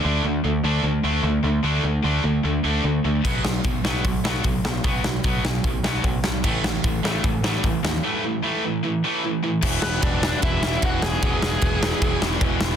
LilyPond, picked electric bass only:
\new Staff \with { instrumentName = "Picked electric bass" } { \clef bass \time 4/4 \key e \mixolydian \tempo 4 = 150 d,8 d,8 d,8 d,8 d,8 d,8 d,8 d,8 | d,8 d,8 d,8 d,8 d,8 d,8 d,8 d,8 | b,,8 b,,8 b,,8 b,,8 b,,8 b,,8 b,,8 b,,8 | b,,8 b,,8 b,,8 b,,8 b,,8 b,,8 b,,8 b,,8 |
a,,8 a,,8 a,,8 a,,8 a,,8 a,,8 a,,8 dis,8 | r1 | e,,8 e,,8 e,,4 e,,8 e,,8 e,,8 e,,8 | e,,8 e,,8 e,,4 e,,8 e,,8 e,,8 e,,8 | }